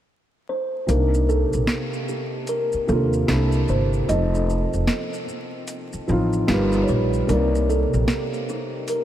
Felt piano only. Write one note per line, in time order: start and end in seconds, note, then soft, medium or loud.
0.87 2.03 C3 medium
0.87 2.04 A#3 medium
0.87 2.05 D4 medium
0.91 2.05 D#4 medium
2.87 3.25 C3 medium
2.87 3.27 A#3 medium
2.87 3.28 D4 medium
2.91 3.30 F4 medium
3.27 3.96 C3 medium
3.27 3.96 A#3 medium
3.27 3.97 D4 medium
3.27 3.97 E4 medium
3.31 3.98 A4 medium
4.07 5.23 F3 medium
4.07 5.24 C4 medium
4.07 5.25 D#4 medium
4.11 5.25 A4 medium
6.08 6.48 F3 medium
6.08 6.49 C4 medium
6.08 6.47 D#4 medium
6.12 6.48 F4 medium
6.48 7.16 G3 loud
6.48 7.16 D#4 medium
6.48 7.17 F4 medium
6.48 7.17 A#4 medium
6.52 7.18 B4 loud
7.27 8.43 C3 medium
7.27 8.44 A#3 medium
7.27 8.45 D#4 medium
7.31 8.45 D5 medium